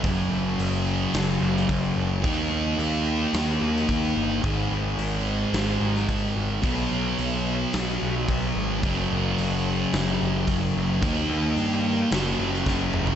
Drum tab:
HH |o---o---o---o---|o---o---o---o---|o---o---o---o---|o---o---o---o---|
SD |--------o--o----|--------o--o----|--------o--o----|--------o-------|
T2 |----------------|----------------|----------------|----------------|
FT |----------------|----------------|----------------|----------------|
BD |o-----------o---|o-----------o---|o-----------o---|o-----------o---|

HH |o---o---o---o---|o---o---o-------|
SD |--------o-------|--------o--oo---|
T2 |----------------|--------------o-|
FT |----------------|---------------o|
BD |o-----------o---|o-----------o---|